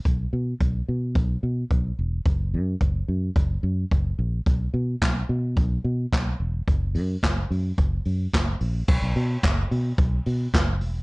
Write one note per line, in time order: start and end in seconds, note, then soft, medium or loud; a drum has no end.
0.05 0.25 B1 medium
0.05 kick medium
0.05 closed hi-hat medium
0.33 0.53 B2 medium
0.60 0.81 B1 medium
0.60 kick medium
0.60 closed hi-hat medium
0.88 1.17 B2 medium
1.15 1.36 B1 medium
1.15 kick medium
1.15 closed hi-hat medium
1.43 1.63 B2 medium
1.70 1.91 B1 medium
1.70 kick medium
1.70 closed hi-hat medium
1.99 2.19 E1 medium
2.25 2.55 F#1 medium
2.25 kick loud
2.25 closed hi-hat medium
2.54 2.74 F#2 medium
2.80 3.01 F#1 medium
2.80 kick medium
2.80 closed hi-hat medium
3.08 3.29 F#2 medium
3.36 3.56 F#1 medium
3.36 kick loud
3.36 closed hi-hat medium
3.63 3.84 F#2 medium
3.91 4.12 F#1 medium
3.91 kick loud
3.91 closed hi-hat soft
4.19 4.39 A#1 medium
4.46 4.67 B1 medium
4.46 kick medium
4.46 closed hi-hat medium
4.74 4.94 B2 medium
5.01 5.22 B1 medium
5.01 kick medium
5.01 snare loud
5.01 clap medium
5.01 closed hi-hat medium
5.29 5.58 B2 medium
5.57 5.77 B1 medium
5.57 kick loud
5.57 closed hi-hat medium
5.84 6.05 B2 loud
6.13 6.33 B1 medium
6.13 kick loud
6.13 snare loud
6.13 clap medium
6.13 closed hi-hat soft
6.40 6.60 E1 medium
6.68 6.96 F#1 medium
6.68 kick loud
6.68 closed hi-hat medium
6.95 7.15 F#2 medium
6.95 open hi-hat medium
7.23 7.43 F#1 medium
7.23 kick medium
7.23 snare loud
7.23 clap medium
7.23 closed hi-hat medium
7.51 7.71 F#2 medium
7.51 open hi-hat soft
7.78 7.98 F#1 loud
7.78 kick loud
7.78 closed hi-hat medium
8.05 8.26 F#2 medium
8.05 open hi-hat soft
8.33 8.54 F#1 medium
8.33 kick medium
8.33 snare loud
8.33 clap medium
8.60 8.81 A#1 loud
8.60 open hi-hat medium
8.88 8.99 B1 loud
8.88 kick loud
8.88 crash loud
9.02 9.12 B1 loud
9.15 9.36 B2 loud
9.15 open hi-hat medium
9.43 9.64 F#1 loud
9.43 kick loud
9.43 snare loud
9.43 clap loud
9.43 closed hi-hat medium
9.71 9.91 B2 loud
9.71 open hi-hat medium
9.98 10.19 B1 loud
9.98 kick loud
9.98 closed hi-hat medium
10.26 10.46 B2 loud
10.26 open hi-hat medium
10.54 10.82 F#1 loud
10.54 kick loud
10.54 snare loud
10.54 clap medium
10.54 closed hi-hat medium
10.81 11.02 E1 loud
10.81 open hi-hat medium